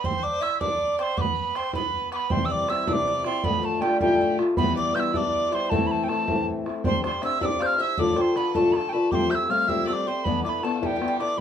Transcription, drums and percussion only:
0.04 bodhran
0.23 bodhran
0.42 bodhran
0.61 bodhran
0.80 bodhran
0.99 bodhran
1.18 bodhran
1.37 bodhran
1.55 bodhran
1.73 bodhran
1.94 bodhran
2.12 bodhran
2.30 bodhran
2.49 bodhran
2.69 bodhran
2.87 bodhran
3.06 bodhran
3.24 bodhran
3.44 bodhran
3.63 bodhran
3.82 bodhran
4.00 bodhran
4.20 bodhran
4.39 bodhran
4.57 bodhran
4.76 bodhran
4.96 bodhran
5.14 bodhran
5.33 bodhran
5.52 bodhran
5.72 bodhran
5.90 bodhran
6.09 bodhran
6.28 bodhran
6.47 bodhran
6.66 bodhran
6.84 bodhran
7.04 bodhran
7.22 bodhran
7.41 bodhran
7.61 bodhran
7.98 bodhran
8.16 bodhran
8.36 bodhran
8.55 bodhran
8.74 bodhran
9.12 bodhran
9.31 bodhran
9.50 bodhran
9.69 bodhran
9.87 bodhran
10.26 bodhran
10.45 bodhran
10.63 bodhran
10.83 bodhran
11.02 bodhran
11.20 bodhran

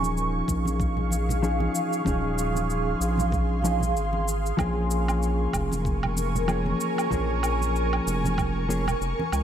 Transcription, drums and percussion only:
0.03 high conga, shaker
0.17 shaker
0.48 kick, shaker
0.65 high conga, shaker
0.80 kick, shaker
0.97 low conga
1.11 high conga, shaker
1.29 low conga, shaker
1.44 shaker
1.60 high conga
1.75 shaker
1.93 shaker
2.05 kick, high conga, shaker
2.38 shaker
2.55 high conga, shaker
2.70 shaker
3.02 shaker
3.18 high conga, low conga, shaker
3.32 kick, low conga, shaker
3.63 high conga, shaker
3.81 low conga, shaker
3.97 shaker
4.13 high conga
4.28 shaker
4.46 shaker
4.58 kick, high conga, low woodblock, shaker
4.91 shaker
5.08 high conga, low woodblock, shaker
5.23 shaker
5.53 kick, low woodblock, shaker
5.72 high conga, shaker
5.85 kick, shaker
6.03 low conga, low woodblock
6.17 high conga, shaker
6.35 low conga, shaker
6.48 low woodblock, shaker
6.66 high conga
6.81 shaker
6.98 low woodblock, shaker
7.11 kick, high conga, shaker
7.43 low woodblock, shaker
7.62 high conga, shaker
7.76 shaker
7.93 low woodblock
8.08 shaker
8.24 high conga, low conga, shaker
8.38 kick, low conga, low woodblock, shaker
8.70 high conga, shaker
8.87 low conga, low woodblock, shaker
9.02 shaker
9.20 high conga
9.33 low woodblock, shaker

